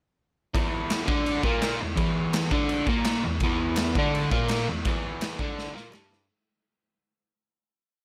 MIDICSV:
0, 0, Header, 1, 3, 480
1, 0, Start_track
1, 0, Tempo, 357356
1, 737, Time_signature, 4, 2, 24, 8
1, 10806, End_track
2, 0, Start_track
2, 0, Title_t, "Overdriven electric guitar"
2, 0, Program_c, 0, 29
2, 725, Note_on_c, 0, 40, 85
2, 726, Note_on_c, 0, 52, 98
2, 1427, Note_on_c, 0, 50, 94
2, 1441, Note_off_c, 0, 40, 0
2, 1442, Note_off_c, 0, 52, 0
2, 1447, Note_on_c, 0, 62, 106
2, 1912, Note_off_c, 0, 50, 0
2, 1922, Note_off_c, 0, 62, 0
2, 1937, Note_on_c, 0, 46, 95
2, 1945, Note_on_c, 0, 58, 93
2, 2407, Note_off_c, 0, 46, 0
2, 2412, Note_off_c, 0, 58, 0
2, 2429, Note_on_c, 0, 40, 72
2, 2613, Note_off_c, 0, 40, 0
2, 2631, Note_on_c, 0, 40, 90
2, 2655, Note_on_c, 0, 52, 94
2, 3356, Note_off_c, 0, 40, 0
2, 3367, Note_on_c, 0, 50, 97
2, 3368, Note_off_c, 0, 52, 0
2, 3381, Note_on_c, 0, 62, 110
2, 3844, Note_off_c, 0, 50, 0
2, 3852, Note_off_c, 0, 62, 0
2, 3859, Note_on_c, 0, 46, 87
2, 3888, Note_on_c, 0, 58, 99
2, 4332, Note_off_c, 0, 46, 0
2, 4341, Note_on_c, 0, 40, 73
2, 4346, Note_off_c, 0, 58, 0
2, 4532, Note_off_c, 0, 40, 0
2, 4606, Note_on_c, 0, 40, 95
2, 4618, Note_on_c, 0, 52, 99
2, 5307, Note_off_c, 0, 40, 0
2, 5314, Note_off_c, 0, 52, 0
2, 5328, Note_on_c, 0, 50, 91
2, 5349, Note_on_c, 0, 62, 99
2, 5789, Note_off_c, 0, 50, 0
2, 5797, Note_off_c, 0, 62, 0
2, 5800, Note_on_c, 0, 46, 77
2, 5802, Note_on_c, 0, 58, 102
2, 6265, Note_off_c, 0, 46, 0
2, 6266, Note_off_c, 0, 58, 0
2, 6294, Note_on_c, 0, 40, 71
2, 6472, Note_off_c, 0, 40, 0
2, 6541, Note_on_c, 0, 40, 96
2, 6550, Note_on_c, 0, 52, 98
2, 7237, Note_off_c, 0, 40, 0
2, 7241, Note_off_c, 0, 52, 0
2, 7250, Note_on_c, 0, 50, 95
2, 7253, Note_on_c, 0, 62, 102
2, 7704, Note_off_c, 0, 50, 0
2, 7710, Note_on_c, 0, 46, 91
2, 7712, Note_off_c, 0, 62, 0
2, 7737, Note_on_c, 0, 58, 93
2, 7932, Note_on_c, 0, 43, 90
2, 7940, Note_off_c, 0, 46, 0
2, 7943, Note_on_c, 0, 55, 97
2, 7954, Note_off_c, 0, 58, 0
2, 8411, Note_off_c, 0, 43, 0
2, 8416, Note_off_c, 0, 55, 0
2, 10806, End_track
3, 0, Start_track
3, 0, Title_t, "Drums"
3, 733, Note_on_c, 9, 36, 107
3, 741, Note_on_c, 9, 49, 67
3, 867, Note_off_c, 9, 36, 0
3, 875, Note_off_c, 9, 49, 0
3, 1208, Note_on_c, 9, 49, 66
3, 1217, Note_on_c, 9, 38, 114
3, 1224, Note_on_c, 9, 39, 98
3, 1342, Note_off_c, 9, 49, 0
3, 1352, Note_off_c, 9, 38, 0
3, 1358, Note_off_c, 9, 39, 0
3, 1451, Note_on_c, 9, 36, 117
3, 1585, Note_off_c, 9, 36, 0
3, 1695, Note_on_c, 9, 49, 65
3, 1829, Note_off_c, 9, 49, 0
3, 1927, Note_on_c, 9, 36, 105
3, 2061, Note_off_c, 9, 36, 0
3, 2170, Note_on_c, 9, 49, 66
3, 2180, Note_on_c, 9, 38, 116
3, 2182, Note_on_c, 9, 39, 97
3, 2305, Note_off_c, 9, 49, 0
3, 2314, Note_off_c, 9, 38, 0
3, 2316, Note_off_c, 9, 39, 0
3, 2651, Note_on_c, 9, 36, 105
3, 2655, Note_on_c, 9, 49, 60
3, 2786, Note_off_c, 9, 36, 0
3, 2789, Note_off_c, 9, 49, 0
3, 3132, Note_on_c, 9, 49, 62
3, 3142, Note_on_c, 9, 38, 122
3, 3142, Note_on_c, 9, 39, 101
3, 3267, Note_off_c, 9, 49, 0
3, 3276, Note_off_c, 9, 38, 0
3, 3277, Note_off_c, 9, 39, 0
3, 3375, Note_on_c, 9, 36, 115
3, 3509, Note_off_c, 9, 36, 0
3, 3612, Note_on_c, 9, 49, 60
3, 3746, Note_off_c, 9, 49, 0
3, 3852, Note_on_c, 9, 36, 107
3, 3986, Note_off_c, 9, 36, 0
3, 4091, Note_on_c, 9, 49, 61
3, 4101, Note_on_c, 9, 38, 114
3, 4101, Note_on_c, 9, 39, 94
3, 4226, Note_off_c, 9, 49, 0
3, 4235, Note_off_c, 9, 38, 0
3, 4236, Note_off_c, 9, 39, 0
3, 4568, Note_on_c, 9, 49, 60
3, 4576, Note_on_c, 9, 36, 112
3, 4702, Note_off_c, 9, 49, 0
3, 4710, Note_off_c, 9, 36, 0
3, 5060, Note_on_c, 9, 39, 101
3, 5061, Note_on_c, 9, 49, 60
3, 5070, Note_on_c, 9, 38, 117
3, 5195, Note_off_c, 9, 39, 0
3, 5195, Note_off_c, 9, 49, 0
3, 5205, Note_off_c, 9, 38, 0
3, 5311, Note_on_c, 9, 36, 107
3, 5445, Note_off_c, 9, 36, 0
3, 5570, Note_on_c, 9, 49, 61
3, 5704, Note_off_c, 9, 49, 0
3, 5795, Note_on_c, 9, 36, 115
3, 5930, Note_off_c, 9, 36, 0
3, 6030, Note_on_c, 9, 49, 70
3, 6033, Note_on_c, 9, 39, 83
3, 6040, Note_on_c, 9, 38, 112
3, 6165, Note_off_c, 9, 49, 0
3, 6168, Note_off_c, 9, 39, 0
3, 6174, Note_off_c, 9, 38, 0
3, 6511, Note_on_c, 9, 49, 63
3, 6521, Note_on_c, 9, 36, 104
3, 6646, Note_off_c, 9, 49, 0
3, 6655, Note_off_c, 9, 36, 0
3, 7004, Note_on_c, 9, 49, 60
3, 7011, Note_on_c, 9, 39, 92
3, 7014, Note_on_c, 9, 38, 108
3, 7139, Note_off_c, 9, 49, 0
3, 7145, Note_off_c, 9, 39, 0
3, 7148, Note_off_c, 9, 38, 0
3, 7242, Note_on_c, 9, 36, 107
3, 7377, Note_off_c, 9, 36, 0
3, 7500, Note_on_c, 9, 38, 66
3, 7634, Note_off_c, 9, 38, 0
3, 7746, Note_on_c, 9, 38, 71
3, 7880, Note_off_c, 9, 38, 0
3, 7963, Note_on_c, 9, 39, 101
3, 7974, Note_on_c, 9, 38, 95
3, 8097, Note_off_c, 9, 39, 0
3, 8108, Note_off_c, 9, 38, 0
3, 8230, Note_on_c, 9, 38, 83
3, 8364, Note_off_c, 9, 38, 0
3, 10806, End_track
0, 0, End_of_file